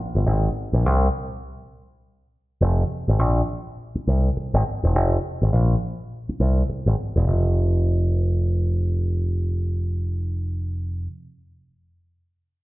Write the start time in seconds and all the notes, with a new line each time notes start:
0.15 G1
0.26 G#1
0.73 A#1
0.86 C2
2.61 F1
3.08 G#1
3.19 A#1
3.95 muted picked electric bass stroke
4.07 C2
4.37 muted picked electric bass stroke
4.54 G#1
4.83 E1
4.95 F1
5.42 G#1
5.53 A#1
6.29 muted picked electric bass stroke
6.40 C2
6.70 muted picked electric bass stroke
6.86 G#1
7.16 E1
7.27 F1